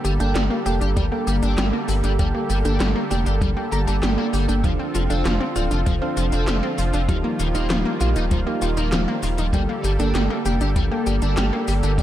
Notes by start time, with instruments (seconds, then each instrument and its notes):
Already playing: analog synth pad D3 G3 A#3 G4 A4, fm electric piano A#3 A4 G5
0.05 analog synth bass G1, overdriven electric guitar G3, synth arpeggio sound G4, closed hi-hat, cabasa
0.20 analog synth bass G1, fm electric piano A#3 A4 G5, synth arpeggio sound D4, overdriven electric guitar D4, closed hi-hat, cabasa
0.35 analog synth bass G1, synth arpeggio sound G3, overdriven electric guitar G3, snare, clap, closed hi-hat, cabasa
0.50 synth arpeggio sound A#3
0.66 analog synth bass F1, fm electric piano A#3 A4 G5, overdriven electric guitar D4, synth arpeggio sound G4, closed hi-hat, cabasa
0.81 analog synth bass G1, synth arpeggio sound D4, overdriven electric guitar G4, closed hi-hat, cabasa
0.96 analog synth bass G1, synth arpeggio sound G3, overdriven electric guitar G3, kick, closed hi-hat, cabasa
1.12 synth arpeggio sound A#3, fm electric piano A#3 A4 G5
1.27 analog synth bass G1, overdriven electric guitar G3, synth arpeggio sound G4, closed hi-hat, cabasa
1.42 analog synth bass G1, synth arpeggio sound D4, overdriven electric guitar D4, closed hi-hat, cabasa
1.58 analog synth bass G1, synth arpeggio sound G3, fm electric piano A#3 A4 G5, overdriven electric guitar A#3, snare, clap, closed hi-hat, cabasa
1.73 synth arpeggio sound A#3
1.88 analog synth bass G1, overdriven electric guitar G3, synth arpeggio sound G4, open hi-hat, cabasa
2.04 analog synth bass G1, overdriven electric guitar G3, synth arpeggio sound D4, closed hi-hat, cabasa
2.19 analog synth bass G1, overdriven electric guitar G3, synth arpeggio sound G3, fm electric piano A#3 A4 G5, kick, closed hi-hat, cabasa
2.34 synth arpeggio sound A#3
2.50 analog synth bass G1, overdriven electric guitar G3, synth arpeggio sound G4, closed hi-hat, cabasa
2.65 analog synth bass G1, fm electric piano A#3 A4 G5, synth arpeggio sound D4, overdriven electric guitar D4, closed hi-hat, cabasa
2.80 analog synth bass G1, overdriven electric guitar G3, synth arpeggio sound G3, snare, clap, closed hi-hat, cabasa
2.96 synth arpeggio sound A#3
3.11 analog synth bass F1, fm electric piano A#3 A4 G5, overdriven electric guitar D4, synth arpeggio sound G4, snare, closed hi-hat, cabasa
3.26 analog synth bass G1, synth arpeggio sound D4, overdriven electric guitar G4, closed hi-hat, cabasa
3.41 analog synth bass G1, overdriven electric guitar G3, synth arpeggio sound G3, kick, closed hi-hat, cabasa
3.57 synth arpeggio sound A#3, fm electric piano A#3 A4 G5
3.72 analog synth bass G1, fm electric piano A#3 A4 A#5, overdriven electric guitar G4, synth arpeggio sound G4, closed hi-hat, cabasa
3.87 analog synth bass G1, overdriven electric guitar G3, fm electric piano A#3 A4 A5, synth arpeggio sound D4, closed hi-hat, cabasa
4.03 analog synth bass G1, synth arpeggio sound G3, fm electric piano A#3 A4 G5, overdriven electric guitar G4, snare, clap, closed hi-hat, cabasa
4.18 synth arpeggio sound A#3, overdriven electric guitar D4
4.33 analog synth bass G1, overdriven electric guitar G3, synth arpeggio sound G4, open hi-hat, cabasa
4.49 analog synth bass G1, overdriven electric guitar G3, fm electric piano A#3 A4 G5, synth arpeggio sound D4, closed hi-hat, cabasa
4.64 analog synth bass F1, overdriven electric guitar F3, synth arpeggio sound F3, analog synth pad F3 C4 F4, fm electric piano D4 A4 F5, kick, closed hi-hat, cabasa
4.79 synth arpeggio sound C4
4.95 analog synth bass F1, overdriven electric guitar F3, synth arpeggio sound F4, closed hi-hat, cabasa
5.10 analog synth bass F1, overdriven electric guitar C4, fm electric piano D4 A4 F5, synth arpeggio sound D4, closed hi-hat, cabasa
5.25 analog synth bass F1, overdriven electric guitar F3, synth arpeggio sound F3, snare, clap, closed hi-hat, cabasa
5.40 synth arpeggio sound C4
5.56 analog synth bass D1, overdriven electric guitar C4, fm electric piano D4 A4 F5, synth arpeggio sound F4, closed hi-hat, cabasa
5.71 analog synth bass F1, synth arpeggio sound D4, overdriven electric guitar F4, closed hi-hat, cabasa
5.86 analog synth bass F1, synth arpeggio sound F3, overdriven electric guitar F3, kick, closed hi-hat, cabasa
6.02 synth arpeggio sound C4, fm electric piano D4 A4 F5
6.17 analog synth bass F1, overdriven electric guitar F3, synth arpeggio sound F4, closed hi-hat, cabasa
6.32 analog synth bass F1, overdriven electric guitar C4, synth arpeggio sound D4, closed hi-hat, cabasa
6.48 analog synth bass F1, synth arpeggio sound F3, overdriven electric guitar A3, fm electric piano D4 A4 F5, snare, clap, closed hi-hat, cabasa
6.63 synth arpeggio sound C4
6.78 analog synth bass F1, overdriven electric guitar F3, synth arpeggio sound F4, open hi-hat, cabasa
6.93 analog synth bass F1, overdriven electric guitar F3, synth arpeggio sound D4, closed hi-hat, cabasa
7.09 analog synth bass D#1, analog synth pad D#3 G3 A#3, overdriven electric guitar D#3, synth arpeggio sound F3, fm electric piano D#4 G4 F5, kick, closed hi-hat, cabasa
7.24 synth arpeggio sound A#3
7.39 analog synth bass D#1, overdriven electric guitar D#3, synth arpeggio sound F4, closed hi-hat, cabasa
7.55 analog synth bass D#1, overdriven electric guitar A#3, fm electric piano D#4 G4 F5, synth arpeggio sound D#4, closed hi-hat, cabasa
7.70 analog synth bass D#1, overdriven electric guitar D#3, synth arpeggio sound F3, snare, clap, closed hi-hat, cabasa
7.85 synth arpeggio sound A#3
8.01 analog synth bass A#1, overdriven electric guitar A#3, fm electric piano D#4 G4 F5, synth arpeggio sound F4, snare, closed hi-hat, cabasa
8.16 analog synth bass D#1, overdriven electric guitar D#4, synth arpeggio sound D#4, closed hi-hat, cabasa
8.31 analog synth bass D#1, overdriven electric guitar D#3, synth arpeggio sound F3, kick, closed hi-hat, cabasa
8.46 synth arpeggio sound A#3, fm electric piano D#4 G4 F5
8.62 analog synth bass D#1, overdriven electric guitar D#3, synth arpeggio sound F4, closed hi-hat, cabasa
8.77 analog synth bass D#1, overdriven electric guitar A#3, synth arpeggio sound D#4, closed hi-hat, cabasa
8.92 analog synth bass D#1, synth arpeggio sound F3, overdriven electric guitar G3, fm electric piano D#4 G4 F5, snare, clap, closed hi-hat, cabasa
9.08 synth arpeggio sound A#3
9.23 analog synth bass D#1, overdriven electric guitar D#3, synth arpeggio sound F4, open hi-hat, cabasa
9.38 analog synth bass D#1, overdriven electric guitar D#3, synth arpeggio sound D#4, closed hi-hat, cabasa
9.53 analog synth bass G1, analog synth pad D3 A#3 G4 A4, overdriven electric guitar G3, synth arpeggio sound G3, fm electric piano A#3 A4 G5, kick, closed hi-hat, cabasa
9.69 synth arpeggio sound A#3
9.84 analog synth bass G1, overdriven electric guitar G3, synth arpeggio sound G4, closed hi-hat, cabasa
9.99 analog synth bass G1, fm electric piano A#3 A4 G5, overdriven electric guitar D4, synth arpeggio sound D4, closed hi-hat, cabasa
10.15 analog synth bass G1, overdriven electric guitar G3, synth arpeggio sound G3, snare, clap, closed hi-hat, cabasa
10.30 synth arpeggio sound A#3
10.45 analog synth bass F1, fm electric piano A#3 A4 G5, overdriven electric guitar D4, synth arpeggio sound G4, closed hi-hat, cabasa
10.61 analog synth bass G1, synth arpeggio sound D4, overdriven electric guitar G4, closed hi-hat, cabasa
10.76 analog synth bass G1, overdriven electric guitar G3, synth arpeggio sound G3, kick, closed hi-hat, cabasa
10.91 fm electric piano A#3 A4 G5, synth arpeggio sound A#3
11.07 analog synth bass G1, overdriven electric guitar G3, synth arpeggio sound G4, closed hi-hat, cabasa
11.22 analog synth bass G1, synth arpeggio sound D4, overdriven electric guitar D4, closed hi-hat, cabasa
11.37 analog synth bass G1, synth arpeggio sound G3, fm electric piano A#3 A4 G5, overdriven electric guitar A#3, snare, clap, closed hi-hat, cabasa
11.53 synth arpeggio sound A#3
11.68 analog synth bass G1, overdriven electric guitar G3, synth arpeggio sound G4, open hi-hat, cabasa
11.83 analog synth bass G1, overdriven electric guitar G3, synth arpeggio sound D4, closed hi-hat, cabasa
11.98 analog synth bass G1, synth arpeggio sound G3, overdriven electric guitar G3, fm electric piano A#3 A4 G5, kick, closed hi-hat, cabasa